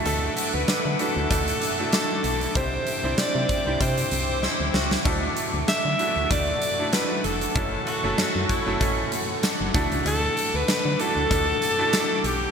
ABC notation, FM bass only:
X:1
M:4/4
L:1/16
Q:"Swing 16ths" 1/4=96
K:D
V:1 name="FM bass" clef=bass
D,,2 z D,, D, D, z D,, D,,2 z4 B,,,2 | =C,,2 z C,, =C, C, z C,, C,2 C,,3 D,, ^C,,2 | D,,2 z D,, D, D, z D,, D,,2 z4 =F,,,2 | F,,,2 z F,,, F,, F,, z F,,, A,,,2 z3 F,,, D,, C,, |
D,,2 z D,, D, D, z D,, D,,2 z4 B,,,2 |]